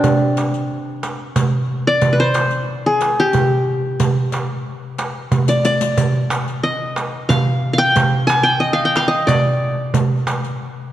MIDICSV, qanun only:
0, 0, Header, 1, 2, 480
1, 0, Start_track
1, 0, Tempo, 660066
1, 28, Time_signature, 3, 2, 24, 8
1, 7945, End_track
2, 0, Start_track
2, 0, Title_t, "Qanun"
2, 0, Program_c, 0, 107
2, 0, Note_on_c, 0, 60, 56
2, 0, Note_on_c, 0, 62, 74
2, 0, Note_on_c, 0, 67, 93
2, 344, Note_off_c, 0, 67, 0
2, 876, Note_off_c, 0, 62, 0
2, 905, Note_off_c, 0, 60, 0
2, 1362, Note_on_c, 0, 74, 94
2, 1547, Note_on_c, 0, 71, 67
2, 1599, Note_on_c, 0, 72, 89
2, 1642, Note_off_c, 0, 71, 0
2, 2078, Note_off_c, 0, 74, 0
2, 2082, Note_on_c, 0, 68, 75
2, 2324, Note_on_c, 0, 67, 77
2, 2366, Note_off_c, 0, 72, 0
2, 2367, Note_off_c, 0, 68, 0
2, 3244, Note_off_c, 0, 67, 0
2, 3989, Note_on_c, 0, 74, 69
2, 4106, Note_off_c, 0, 74, 0
2, 4109, Note_on_c, 0, 74, 78
2, 4825, Note_on_c, 0, 75, 79
2, 4869, Note_off_c, 0, 74, 0
2, 5301, Note_on_c, 0, 77, 86
2, 5517, Note_off_c, 0, 75, 0
2, 5621, Note_off_c, 0, 77, 0
2, 5624, Note_on_c, 0, 77, 73
2, 5659, Note_on_c, 0, 79, 99
2, 6014, Note_on_c, 0, 80, 95
2, 6058, Note_off_c, 0, 79, 0
2, 6134, Note_on_c, 0, 79, 86
2, 6178, Note_off_c, 0, 80, 0
2, 6255, Note_on_c, 0, 75, 81
2, 6269, Note_off_c, 0, 77, 0
2, 6350, Note_on_c, 0, 77, 88
2, 6433, Note_off_c, 0, 79, 0
2, 6436, Note_on_c, 0, 79, 83
2, 6517, Note_off_c, 0, 77, 0
2, 6520, Note_on_c, 0, 77, 87
2, 6599, Note_off_c, 0, 75, 0
2, 6602, Note_on_c, 0, 75, 84
2, 6740, Note_on_c, 0, 74, 73
2, 6784, Note_off_c, 0, 75, 0
2, 7038, Note_off_c, 0, 79, 0
2, 7165, Note_off_c, 0, 77, 0
2, 7725, Note_off_c, 0, 74, 0
2, 7945, End_track
0, 0, End_of_file